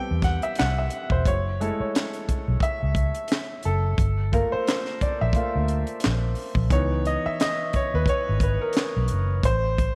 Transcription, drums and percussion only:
0.22 kick medium
0.22 snare soft
0.22 closed hi-hat medium
0.42 closed hi-hat medium
0.55 snare loud
0.55 closed hi-hat medium
0.60 clap medium
0.90 closed hi-hat medium
1.10 kick medium
1.25 kick loud
1.25 closed hi-hat medium
1.61 closed hi-hat medium
1.95 snare loud
1.95 clap medium
1.95 closed hi-hat medium
2.13 closed hi-hat soft
2.29 kick medium
2.29 closed hi-hat medium
2.60 kick medium
2.60 closed hi-hat medium
2.95 kick medium
2.95 closed hi-hat medium
3.15 closed hi-hat medium
3.28 snare loud
3.28 closed hi-hat medium
3.33 clap medium
3.63 closed hi-hat medium
3.98 kick loud
3.98 closed hi-hat medium
4.33 kick medium
4.33 closed hi-hat medium
4.67 snare loud
4.67 clap medium
4.67 closed hi-hat medium
4.85 snare soft
5.01 kick medium
5.01 closed hi-hat medium
5.33 kick medium
5.33 closed hi-hat medium
5.68 closed hi-hat medium
5.87 closed hi-hat medium
6.00 snare loud
6.00 closed hi-hat medium
6.05 clap medium
6.35 open hi-hat soft
6.55 kick medium
6.70 kick loud
6.70 closed hi-hat medium
7.05 closed hi-hat medium
7.40 snare loud
7.40 clap loud
7.40 closed hi-hat medium
7.73 kick medium
7.73 closed hi-hat medium
8.06 kick medium
8.06 closed hi-hat medium
8.40 kick medium
8.40 closed hi-hat medium
8.73 snare loud
8.73 closed hi-hat medium
8.77 clap medium
9.08 closed hi-hat medium
9.43 kick loud
9.43 closed hi-hat medium
9.78 kick medium
9.78 closed hi-hat medium

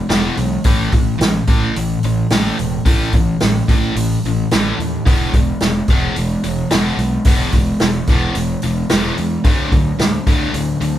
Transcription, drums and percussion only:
0.10 snare loud
0.10 open hi-hat medium
0.37 open hi-hat soft
0.64 kick medium
0.64 open hi-hat medium
0.92 kick medium
0.92 open hi-hat soft
1.21 snare loud
1.21 open hi-hat medium
1.47 kick medium
1.47 open hi-hat soft
1.76 open hi-hat medium
2.03 open hi-hat soft
2.30 snare loud
2.30 open hi-hat medium
2.59 open hi-hat soft
2.86 kick medium
2.86 open hi-hat medium
3.13 kick medium
3.13 open hi-hat soft
3.40 snare medium
3.40 open hi-hat medium
3.68 kick medium
3.68 open hi-hat medium
3.96 open hi-hat medium
4.25 open hi-hat soft
4.51 snare loud
4.51 open hi-hat medium
4.80 open hi-hat soft
5.06 kick loud
5.06 open hi-hat medium
5.34 kick medium
5.34 open hi-hat soft
5.60 snare medium
5.60 open hi-hat medium
5.88 kick medium
5.88 open hi-hat soft
6.16 open hi-hat medium
6.44 open hi-hat soft
6.71 snare loud
6.71 open hi-hat medium
6.99 open hi-hat soft
7.25 kick loud
7.25 open hi-hat medium
7.52 kick medium
7.52 open hi-hat soft
7.80 snare loud
7.80 open hi-hat medium
8.07 kick medium
8.07 open hi-hat medium
8.35 open hi-hat medium
8.62 open hi-hat medium
8.89 snare loud
8.89 open hi-hat medium
9.18 open hi-hat soft
9.44 kick loud
9.44 open hi-hat medium
9.72 kick medium
9.72 open hi-hat soft
9.99 snare medium
9.99 open hi-hat medium
10.27 kick medium
10.27 open hi-hat soft
10.54 open hi-hat medium
10.81 open hi-hat soft

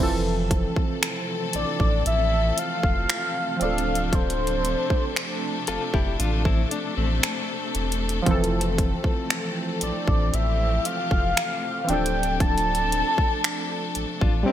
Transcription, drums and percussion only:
0.51 kick medium
0.51 closed hi-hat medium
0.76 kick medium
1.03 finger snap loud
1.03 closed hi-hat medium
1.53 closed hi-hat medium
1.80 kick medium
2.06 closed hi-hat medium
2.58 closed hi-hat medium
2.83 kick medium
3.09 finger snap loud
3.09 closed hi-hat medium
3.61 closed hi-hat medium
3.78 closed hi-hat medium
3.95 closed hi-hat medium
4.13 kick loud
4.13 closed hi-hat medium
4.30 closed hi-hat medium
4.47 closed hi-hat medium
4.65 closed hi-hat medium
4.90 kick medium
5.16 finger snap loud
5.16 closed hi-hat medium
5.67 closed hi-hat medium
5.94 kick medium
6.20 closed hi-hat medium
6.45 kick loud
6.71 closed hi-hat medium
7.23 finger snap loud
7.23 closed hi-hat medium
7.75 closed hi-hat medium
7.92 closed hi-hat medium
8.09 closed hi-hat medium
8.26 kick loud
8.26 closed hi-hat medium
8.44 closed hi-hat medium
8.61 closed hi-hat medium
8.78 kick medium
8.78 closed hi-hat medium
9.04 kick medium
9.30 finger snap loud
9.30 closed hi-hat medium
9.81 closed hi-hat medium
10.08 kick medium
10.34 closed hi-hat medium
10.85 closed hi-hat medium
11.11 kick medium
11.37 finger snap loud
11.37 closed hi-hat medium
11.89 closed hi-hat medium
12.06 closed hi-hat medium
12.23 closed hi-hat medium
12.40 kick loud
12.40 closed hi-hat medium
12.58 closed hi-hat soft
12.75 closed hi-hat medium
12.92 closed hi-hat medium
13.18 kick medium
13.44 finger snap loud
13.44 closed hi-hat medium
13.95 closed hi-hat medium
14.21 kick loud

